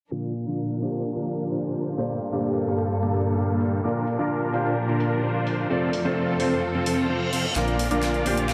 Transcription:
0.11 0.44 A#2 medium
0.11 1.96 A#2 medium
0.11 1.96 F3 medium
0.11 0.44 A#3 medium
0.11 1.96 D4 medium
0.11 0.33 D4 medium
0.11 0.44 D4 medium
0.11 0.33 F4 medium
0.11 0.44 F4 medium
0.11 1.96 A#4 medium
0.11 0.33 A#4 medium
0.11 0.44 A#4 medium
0.35 open hi-hat loud
0.46 0.79 A#2 medium
0.46 0.79 A#3 medium
0.46 0.79 D4 medium
0.46 0.79 F4 medium
0.46 0.79 A#4 loud
0.46 0.79 A#4 medium
0.80 1.94 A#2 medium
0.80 1.95 A#3 medium
0.80 1.95 D4 medium
0.80 1.02 D4 medium
0.80 1.02 F4 medium
0.80 1.95 F4 medium
0.80 1.96 G4 medium
0.80 1.02 C5 loud
0.80 open hi-hat loud
1.16 1.49 D4 medium
1.16 1.49 F4 medium
1.16 1.49 A#4 medium
1.28 open hi-hat loud
1.51 1.95 D4 medium
1.51 1.95 F4 medium
1.51 1.95 C5 medium
1.75 open hi-hat loud
1.97 2.30 G2 medium
1.97 3.82 G2 medium
1.97 3.82 G3 medium
1.97 2.30 A#3 medium
1.97 3.82 A#3 medium
1.97 2.19 A#3 medium
1.97 2.19 D4 medium
1.97 2.30 D4 medium
1.97 2.19 G4 medium
1.97 2.30 G4 medium
1.97 3.82 A4 medium
1.97 2.19 A4 medium
1.97 2.30 C5 medium
1.97 2.19 D5 medium
2.21 open hi-hat loud
2.32 2.65 G2 medium
2.32 2.65 A#3 medium
2.32 2.65 D4 medium
2.32 2.65 G4 medium
2.32 2.65 A4 medium
2.32 2.65 D5 loud
2.67 3.81 G2 medium
2.67 3.81 A#3 medium
2.67 2.88 A#3 medium
2.67 2.88 D4 medium
2.67 3.81 D4 medium
2.67 2.88 G4 medium
2.67 3.82 G4 medium
2.67 2.88 A4 medium
2.67 3.82 A4 medium
2.67 2.88 F5 loud
2.67 open hi-hat loud
3.03 3.35 A#3 medium
3.03 3.35 D4 medium
3.03 3.35 G4 medium
3.03 3.35 A4 medium
3.03 3.35 D5 medium
3.14 open hi-hat loud
3.37 3.81 A#3 medium
3.37 3.81 D4 medium
3.37 3.81 G4 medium
3.37 3.81 A4 medium
3.37 3.81 F5 medium
3.61 open hi-hat loud
3.83 4.16 A#2 medium
3.83 5.68 A#2 medium
3.83 7.52 F3 medium
3.83 4.16 A#3 medium
3.83 5.68 D4 medium
3.83 4.16 D4 medium
3.83 4.05 D4 medium
3.83 4.05 F4 medium
3.83 4.16 F4 medium
3.83 5.68 A#4 medium
3.83 4.05 A#4 medium
3.83 4.16 A#4 medium
4.07 open hi-hat loud
4.18 4.51 A#2 medium
4.18 4.51 A#3 medium
4.18 4.51 D4 medium
4.18 4.51 F4 medium
4.18 4.51 A#4 loud
4.18 4.51 A#4 medium
4.53 5.67 A#2 medium
4.53 5.67 A#3 medium
4.53 4.75 D4 medium
4.53 5.67 D4 medium
4.53 4.75 F4 medium
4.53 5.68 F4 medium
4.53 5.68 G4 medium
4.53 4.75 C5 loud
4.53 open hi-hat loud
4.89 5.21 D4 medium
4.89 5.21 F4 medium
4.89 5.21 A#4 medium
5.00 open hi-hat loud
5.24 5.67 D4 medium
5.24 5.67 F4 medium
5.24 5.67 C5 medium
5.47 open hi-hat loud
5.69 7.54 F2 medium
5.69 6.02 A3 medium
5.69 6.02 C4 medium
5.69 5.91 C4 medium
5.69 7.54 C4 medium
5.69 5.91 F4 medium
5.69 6.02 F4 medium
5.69 5.91 A4 medium
5.69 7.54 A4 medium
5.69 6.02 D5 medium
5.93 open hi-hat loud
6.04 6.37 A3 medium
6.04 6.37 C4 medium
6.04 6.37 F4 medium
6.04 6.37 A4 loud
6.04 6.37 C5 medium
6.39 7.53 A3 medium
6.39 7.53 C4 medium
6.39 6.61 C4 loud
6.39 6.61 F4 medium
6.39 7.54 F4 medium
6.39 7.54 A4 medium
6.39 6.61 C5 loud
6.39 open hi-hat loud
6.63 reverse cymbal medium
6.75 7.07 C4 medium
6.75 7.07 F4 medium
6.75 7.07 A4 medium
6.86 open hi-hat loud
7.10 7.30 C4 medium
7.10 7.30 F4 medium
7.10 7.30 C5 loud
7.33 7.46 C4 loud
7.33 7.46 F4 medium
7.33 7.46 C5 loud
7.33 open hi-hat loud
7.55 7.89 A#1 loud
7.55 7.88 A#2 medium
7.55 7.88 A#3 medium
7.55 8.54 A#3 medium
7.55 7.88 D4 medium
7.55 7.77 D4 medium
7.55 7.77 F4 medium
7.55 7.88 F4 medium
7.55 7.77 A#4 loud
7.55 7.88 A#4 medium
7.55 8.54 D5 medium
7.55 8.54 F5 medium
7.55 8.54 D6 medium
7.55 snare soft
7.55 closed hi-hat medium
7.55 riser medium
7.68 closed hi-hat soft
7.79 open hi-hat loud
7.90 8.24 A#1 loud
7.90 8.23 A#2 medium
7.90 8.23 A#3 medium
7.90 8.23 D4 medium
7.90 8.23 F4 medium
7.90 8.23 A#4 loud
7.90 8.23 A#4 medium
7.90 closed hi-hat medium
8.03 snare medium
8.03 closed hi-hat medium
8.14 closed hi-hat soft
8.25 8.54 A#1 medium
8.25 8.54 A#2 medium
8.25 8.54 A#3 medium
8.25 8.47 D4 loud
8.25 8.54 D4 medium
8.25 8.47 F4 medium
8.25 8.54 F4 medium
8.25 8.54 G4 medium
8.25 8.47 C5 loud
8.25 open hi-hat loud
8.38 closed hi-hat medium
8.49 snare medium
8.49 closed hi-hat medium

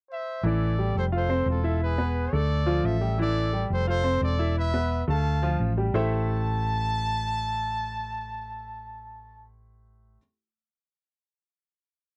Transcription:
0.11 0.42 C5 medium
0.11 0.43 E5 medium
0.43 0.91 A1 medium
0.43 0.72 E3 medium
0.43 0.72 E4 medium
0.43 0.96 A4 medium
0.43 0.97 D5 loud
0.78 1.06 G3 medium
0.78 1.07 G4 medium
0.95 1.43 F1 medium
0.95 1.04 A4 medium
0.95 1.05 C5 medium
1.12 1.26 F4 medium
1.12 1.46 A4 medium
1.12 1.46 C5 medium
1.12 1.27 F5 medium
1.29 1.58 C4 medium
1.29 1.58 C5 medium
1.46 2.27 E1 medium
1.50 1.83 F4 medium
1.50 1.83 A4 medium
1.63 1.92 E4 medium
1.63 1.92 E5 medium
1.83 2.30 G#4 medium
1.83 2.30 B4 medium
1.98 2.26 B3 medium
1.98 2.26 B4 medium
2.33 2.81 D2 medium
2.33 2.61 A3 medium
2.33 2.81 A4 medium
2.33 2.61 A4 medium
2.33 2.84 D5 loud
2.66 2.95 F3 medium
2.66 2.95 F4 medium
2.84 3.64 A1 loud
2.84 3.19 A4 medium
2.84 3.19 E5 medium
3.01 3.15 G3 medium
3.01 3.16 G4 medium
3.18 3.47 E3 medium
3.18 3.47 E4 medium
3.18 3.68 A4 medium
3.18 3.67 D5 loud
3.53 3.81 G3 medium
3.53 3.81 G4 medium
3.70 4.18 F1 medium
3.70 3.87 A4 medium
3.70 3.86 C5 medium
3.87 4.02 F4 medium
3.87 4.20 A4 medium
3.87 4.19 C5 loud
3.87 4.02 F5 medium
4.03 4.32 C4 medium
4.03 4.33 C5 medium
4.21 5.02 E1 medium
4.21 4.55 A4 medium
4.21 4.54 D5 loud
4.39 4.67 E4 medium
4.39 4.67 E5 medium
4.57 5.05 B4 medium
4.57 5.05 E5 loud
4.74 5.02 B3 medium
4.74 5.02 B4 medium
5.08 5.56 D2 loud
5.08 5.36 A3 medium
5.08 5.36 A4 medium
5.08 5.61 F5 medium
5.08 5.60 A5 loud
5.42 5.71 F3 medium
5.42 5.71 F4 medium
5.60 5.90 A1 loud
5.77 5.91 G3 medium
5.77 5.92 G4 medium
5.94 10.16 A1 medium
5.94 10.16 A3 medium
5.94 10.17 E4 medium
5.94 10.17 G4 medium
5.94 10.17 A4 medium
5.94 10.17 C5 medium
5.94 10.17 E5 medium
5.94 9.47 A5 loud

